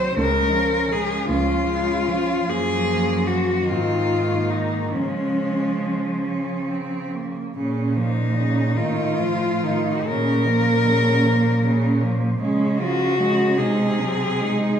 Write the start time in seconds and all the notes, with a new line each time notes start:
Already playing: F#3 C4 C5
0.14 C#2 C#3 G#3
0.19 A#4
0.51 F3 C#4
0.90 C#3 G#3 G#4
1.29 C#2 F3 C#4 F4
1.69 C#3 G#3
2.09 F3 C#4
2.46 F#2 F3 A#3 G#4
3.27 F#4
3.67 G#2 D#3 C4 F4
4.31 A#3
4.50 D#4
4.93 C#3 F3 G#3 C#4
6.25 C#4
6.70 C4
7.15 A#3
7.56 A#2 C#3 C#4
7.95 F3 A#3 D#4
8.36 C#3 C#4
8.77 A2 D#3 D#4 F4
9.18 F3 F4
9.63 D#3 D#4
10.06 A#2 C#3 C#4 A#4
10.48 F3 A#3
10.87 C#3 C#4
11.25 F3 A#3
11.63 C#3 C#4
12.02 F3 A#3
12.41 C#3 G#3 C#4
12.79 F3 F4 F#4
13.19 G#3 C#4
13.57 C3 G#3 D#4 G#4
13.98 F#3 C4
14.40 G#3 D#4